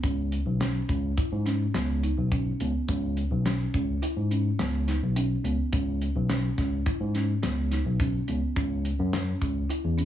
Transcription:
0.03 C#2 C#4, kick, closed hi-hat
0.32 closed hi-hat
0.47 B1
0.60 C#4, snare, closed hi-hat
0.89 C#2 C#4, kick, closed hi-hat
1.17 E4, kick, closed hi-hat
1.32 G#2
1.46 C#4, snare, closed hi-hat
1.74 C#2 B3, snare, closed hi-hat
2.03 D#4, closed hi-hat
2.17 B1
2.32 C#4, kick, closed hi-hat
2.60 C#2 B3, closed hi-hat
2.88 C#2 C#4, kick, closed hi-hat
3.17 closed hi-hat
3.32 B1
3.45 C#4, snare, closed hi-hat
3.74 C#2 C#4, kick, closed hi-hat
4.02 E4, closed hi-hat
4.17 G#2
4.31 C#4, closed hi-hat
4.59 C#2 B3, snare, closed hi-hat
4.88 D#4, snare, closed hi-hat
5.02 B1
5.16 C#4, closed hi-hat
5.44 C#2 B3, closed hi-hat
5.73 C#2 C#4, kick, closed hi-hat
6.01 closed hi-hat
6.15 B1
6.29 C#4, snare, closed hi-hat
6.58 C#2 C#4, kick, snare, closed hi-hat
6.86 E4, kick, closed hi-hat
7.00 G#2
7.15 C#4, snare, closed hi-hat
7.43 C#2 B3, snare, closed hi-hat
7.71 D#4, snare, closed hi-hat
7.86 B1
8.00 C#4, kick, closed hi-hat
8.28 C#2 B3, closed hi-hat
8.56 C#2 C#4, kick, closed hi-hat
8.85 closed hi-hat
8.99 F#2
9.13 C#4, snare, closed hi-hat
9.41 C#2 C#4, kick, closed hi-hat
9.70 E4, closed hi-hat
9.84 E2
9.98 C#4, closed hi-hat

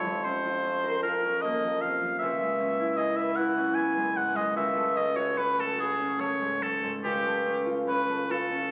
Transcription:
Already playing: F1 F2 F4 C#5
0.05 F3
0.24 C#4 C5
0.45 F4
0.64 C#4
0.84 A#4
1.03 F4 A#4
1.25 C#4
1.41 A#3 D#5
1.64 F3
1.81 C3 F5
2.02 F3
2.19 C#2 E5
2.42 G#3
2.60 C#4
2.79 E4
2.97 G#4 D#5
3.16 B4 E5
3.35 E4 F#5
3.57 C#4
3.75 B3 G#5
3.97 G#3
4.16 G#2 F#5
4.36 G#3 D#5
4.56 C#2 E5
4.76 A3
4.96 C#4 D#5
5.16 F#4 C#5
5.36 C#4 B4
5.57 A3 A4
5.78 F#4 G#4
6.00 C#4
6.20 A3 C#5
6.41 G#2
6.62 A3 A4
6.83 G#2
7.04 C#2 G4
7.26 A3
7.46 C#4
7.66 F4
7.87 C#4 B4
8.09 A3
8.29 F4 A4
8.51 C#4

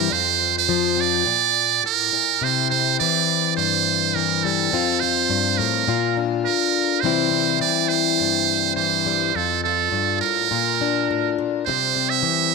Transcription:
Already playing: G3 C4 E4 A#4
0.11 F2 F4 C5
0.59 C5
0.69 F3
0.97 C4
1.01 D5
1.25 A#2, muted steel-string acoustic guitar stroke
1.84 A2 A#4
2.12 A#2
2.41 C3 E4 C5
2.70 C4 C5
3.00 E3 D5
3.57 G2 C5
4.15 E3 A#4
4.44 G3 A4
4.71 F2 F3 C4 F4
5.00 F4 C5
5.29 G2
5.58 A2 A#4
5.88 A#2 F4
6.17 D4
6.45 D3 A#4
7.01 C3 E3 C5
7.05 G3 C4 E4
7.31 C4
7.60 E3 D5
7.89 C5
8.20 G2
8.76 E3 C5
9.06 G3
9.35 F2 F4 A4
9.64 F4 A4
9.92 G2
10.21 A2 A#4
10.51 A#2 F4
10.81 D4
11.11 A2
11.38 A#2
11.66 C3 G3 C5, muted steel-string acoustic guitar stroke
11.95 C4
12.10 E5
12.23 E3

